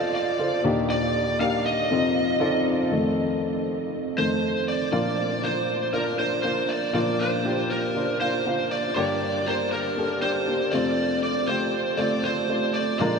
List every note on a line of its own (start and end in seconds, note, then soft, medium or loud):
0.00 0.61 F2 medium
0.00 0.61 C3 medium
0.00 0.39 F4 loud
0.00 0.40 A4 medium
0.00 0.41 C5 loud
0.00 0.14 D5 loud
0.00 0.28 D#5 medium
0.15 0.61 D5 medium
0.39 0.64 F4 medium
0.39 0.65 A4 medium
0.39 0.65 C5 medium
0.64 1.86 D#2 medium
0.64 1.86 A#2 medium
0.64 1.24 A#3 medium
0.64 1.25 D4 medium
0.64 1.25 D#4 medium
0.64 1.25 G4 medium
0.64 1.25 D5 medium
0.90 1.40 D5 loud
1.40 1.78 A#3 medium
1.40 1.78 D4 medium
1.40 1.79 D#4 medium
1.40 1.79 G4 medium
1.40 1.79 D5 medium
1.40 1.66 F5 loud
1.66 2.62 D#5 loud
1.90 2.88 F2 medium
1.90 2.87 C3 medium
1.90 2.29 C4 medium
1.90 2.29 D#4 medium
1.90 2.29 F4 medium
1.90 2.29 A4 medium
1.90 2.30 D#5 medium
2.39 2.79 C4 medium
2.39 2.79 D#4 medium
2.39 2.79 F4 medium
2.39 2.79 A4 medium
2.39 2.79 D5 medium
2.91 3.63 F2 medium
2.91 3.63 D#3 soft
2.91 3.64 A3 medium
4.17 4.40 F2 soft
4.17 4.40 D#3 soft
4.17 4.40 A3 soft
4.17 4.65 C5 medium
4.68 4.91 D5 medium
4.92 6.90 A#2 medium
4.92 6.90 F3 medium
4.92 5.31 A#3 medium
4.92 5.31 D4 medium
4.92 5.31 F4 medium
4.92 5.45 D5 medium
4.92 5.31 D5 medium
5.42 5.81 A#3 medium
5.42 5.82 D4 soft
5.42 5.82 F4 medium
5.42 5.93 C5 medium
5.42 5.82 D5 medium
5.93 6.12 A#3 medium
5.93 6.12 D4 medium
5.93 6.13 F4 medium
5.93 6.19 A#4 medium
5.93 6.13 D5 medium
6.18 6.38 A#3 medium
6.18 6.38 D4 soft
6.18 6.38 F4 soft
6.18 6.42 C5 medium
6.18 6.39 D5 medium
6.43 6.82 A#3 medium
6.43 6.82 D4 medium
6.43 6.83 F4 medium
6.43 6.70 C5 medium
6.43 6.83 D5 medium
6.69 6.93 D5 medium
6.93 8.92 A#2 medium
6.93 8.92 F3 medium
6.93 7.32 A#3 medium
6.93 7.33 D4 medium
6.93 7.33 F4 medium
6.93 7.20 D5 medium
6.93 7.33 D5 medium
7.19 7.70 C5 medium
7.44 7.83 A#3 medium
7.44 7.83 D4 medium
7.44 7.83 F4 medium
7.44 7.84 G4 medium
7.71 8.20 A#4 medium
7.95 8.14 A#3 medium
7.95 8.15 D4 medium
7.95 8.15 F4 medium
7.95 8.15 C5 medium
8.20 8.39 A#3 medium
8.20 8.40 D4 medium
8.20 8.40 F4 medium
8.20 8.72 C5 medium
8.20 8.40 F5 medium
8.45 8.84 A#3 medium
8.45 8.84 D4 medium
8.45 8.85 F4 medium
8.45 8.85 F5 medium
8.71 8.95 D5 medium
8.96 10.69 G2 medium
8.96 10.69 D3 medium
8.96 9.34 A#3 medium
8.96 9.35 D4 medium
8.96 9.35 G4 medium
8.96 9.48 D5 medium
8.96 9.35 D5 loud
9.46 9.85 A#3 medium
9.46 9.85 D4 medium
9.46 9.85 G4 medium
9.46 9.86 A#4 medium
9.46 9.71 C5 medium
9.72 10.22 A#4 medium
9.97 10.16 A#3 medium
9.97 10.16 D4 medium
9.97 10.17 G4 medium
9.97 10.17 A4 medium
10.21 10.41 A#3 medium
10.21 10.41 D4 medium
10.21 10.42 G4 medium
10.21 10.74 C5 medium
10.21 10.42 D5 medium
10.47 10.72 A#3 medium
10.47 10.73 D4 medium
10.47 10.73 G4 medium
10.47 10.73 D5 medium
10.72 12.71 F2 soft
10.72 12.71 C3 medium
10.72 11.33 A3 medium
10.72 11.34 C4 medium
10.72 11.34 F4 medium
10.72 11.34 C5 medium
10.72 11.22 D5 medium
11.23 11.46 D5 medium
11.47 11.86 A3 medium
11.47 11.87 C4 medium
11.47 11.87 F4 soft
11.47 11.87 G4 medium
11.47 12.00 C5 medium
11.97 12.17 A3 medium
11.97 12.18 C4 medium
11.97 12.18 F4 medium
11.97 12.24 D5 medium
11.97 12.18 D5 medium
12.24 12.43 A3 medium
12.24 12.43 C4 medium
12.24 12.44 F4 soft
12.24 12.76 C5 medium
12.24 12.44 C5 medium
12.49 12.87 A3 medium
12.49 12.88 C4 soft
12.49 12.88 F4 medium
12.49 12.88 D5 medium
12.74 12.98 D5 medium
13.00 13.19 A#2 medium
13.00 13.19 F3 medium
13.00 13.19 G#3 medium
13.00 13.19 D4 medium
13.00 13.19 F4 medium
13.00 13.19 A#4 medium
13.00 13.19 D5 medium